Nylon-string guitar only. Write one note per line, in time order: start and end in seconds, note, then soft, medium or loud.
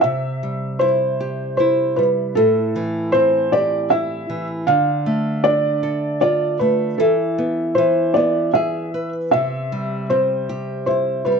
0.04 2.33 C3 medium
0.43 1.95 G3 soft
0.81 1.59 E4 medium
1.20 2.34 G4 soft
1.60 2.35 E4 soft
1.99 2.36 G3 soft
2.37 4.64 A2 medium
2.76 4.26 E3 medium
3.14 4.64 C4 medium
3.53 4.65 G4 soft
3.91 4.66 E4 medium
4.30 4.67 E3 soft
4.68 6.95 D3 medium
5.06 6.56 A3 medium
5.45 6.95 D4 medium
5.83 6.95 A4 soft
6.22 6.97 F4 medium
6.61 6.98 A3 soft
7.00 7.74 E3 medium
7.38 7.76 B3 medium
7.78 9.30 E3 medium
8.16 9.30 B3 soft
8.55 8.94 G#4 medium
8.94 9.32 B4 soft
9.33 11.40 C3 medium
9.72 11.22 G3 medium
10.10 11.40 C4 soft
10.49 11.40 G4 medium
10.87 11.40 E4 soft
11.26 11.40 G3 soft